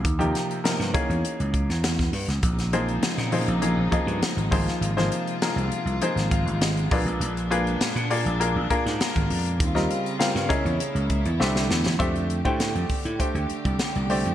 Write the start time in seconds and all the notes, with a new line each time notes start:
0.05 D#2, kick, closed hi-hat
0.19 C3 F3 A#3 D#4 G4, closed hi-hat
0.35 snare, closed hi-hat
0.51 closed hi-hat
0.64 C3 F3 A#3 D#4 A#4, snare, closed hi-hat
0.80 G2, snare, closed hi-hat
0.94 E3 A#3 C#4 D#4 G#4, muted slap bass stroke, kick, closed hi-hat
1.09 E2, closed hi-hat
1.25 closed hi-hat
1.40 C#2, closed hi-hat
1.54 kick, closed hi-hat
1.69 E2, snare, closed hi-hat
1.84 snare, closed hi-hat
1.99 kick, snare, closed hi-hat
2.13 G2, open hi-hat
2.28 C#2, snare, closed hi-hat
2.43 A#1 C#3 G#3 C4 D#4, kick, closed hi-hat
2.59 snare, closed hi-hat
2.73 F3 A#3 D#4 G#4 C5, closed hi-hat
2.88 closed hi-hat
3.03 snare, closed hi-hat
3.18 A#2, snare, closed hi-hat
3.32 F3 A#3 D#4 G#4 C5, open hi-hat
3.48 A#1, closed hi-hat
3.62 F3 A#3 D#4 G#4 D#5, closed hi-hat
3.77 A#1
3.92 F3 A#3 D#4 G#4 D#5, kick, closed hi-hat
4.07 G2, closed hi-hat
4.21 muted slap bass stroke, snare, closed hi-hat
4.37 G#1, closed hi-hat
4.51 G#1 C3 F3 A#3 D#4 F4 G#4 C5, kick, open hi-hat
4.68 snare, closed hi-hat
4.81 G#1, closed hi-hat
4.97 F3 A#3 D#4 G#4 C5, snare, closed hi-hat
5.12 closed hi-hat
5.27 closed hi-hat
5.42 F3 A#3 D#4 G#4 A#4, snare, closed hi-hat
5.56 C2, closed hi-hat
5.71 muted slap bass stroke, closed hi-hat
5.85 C2, closed hi-hat
6.02 F3 A#3 D#4 G#4 C5, closed hi-hat
6.16 G#1, snare, closed hi-hat
6.31 F5, kick, closed hi-hat
6.46 G#1, closed hi-hat
6.61 D#5, snare, closed hi-hat
6.77 closed hi-hat
6.91 A#1 A#2 A#3 D4 F4 G#4 B4 D5, kick, open hi-hat
7.06 A#1, closed hi-hat
7.20 A#1, closed hi-hat
7.37 closed hi-hat
7.50 A#3 D4 F4 G#4 B4, closed hi-hat
7.67 closed hi-hat
7.81 snare, closed hi-hat
7.96 A#2, closed hi-hat
8.10 A#3 D4 F4 G#4 D5, open hi-hat
8.26 A#1, closed hi-hat
8.40 A#3 D4 F4 G#4 A#4, closed hi-hat
8.56 A#1
8.70 A#3 D4 F4 G#4 A#4, kick, closed hi-hat
8.86 G#2, snare, closed hi-hat
9.00 muted slap bass stroke, snare, closed hi-hat
9.16 G#1, kick, closed hi-hat
9.30 F2, open hi-hat
9.46 closed hi-hat
9.60 D#2 C#3 G3 C4 F4, kick, closed hi-hat
9.75 G3 C4 F4 A#4 D#5, snare, closed hi-hat
9.91 closed hi-hat
10.06 closed hi-hat
10.19 G3 C4 F4 A#4 F5, snare, closed hi-hat
10.35 G2, snare, closed hi-hat
10.49 A#2 C#4 E4 G#4 A#4 D#5, muted slap bass stroke, kick, closed hi-hat
10.65 E2, closed hi-hat
10.80 closed hi-hat
10.95 C#2, closed hi-hat
11.10 kick, closed hi-hat
11.25 E2, closed hi-hat
11.39 C2 D3 A3 D4 G4 C5 E5, snare
11.56 snare
11.70 E2, snare
11.86 E2, snare
11.99 F2 D3 A3 D4 G4 C5 E5, kick, closed hi-hat
12.16 closed hi-hat
12.30 closed hi-hat
12.45 A2 A3 D4 G4 C5 G5, kick, closed hi-hat
12.60 snare, closed hi-hat
12.75 F2, closed hi-hat
12.89 muted slap bass stroke, kick, open hi-hat
13.05 A2, closed hi-hat
13.19 A3 D4 G4 C5 G5, kick, closed hi-hat
13.35 D2, closed hi-hat
13.50 muted slap bass stroke, closed hi-hat
13.65 C2, kick, closed hi-hat
13.79 snare, closed hi-hat
13.95 C2, closed hi-hat
14.10 A3 D4 G4 C5 D5, open hi-hat
14.25 F2, closed hi-hat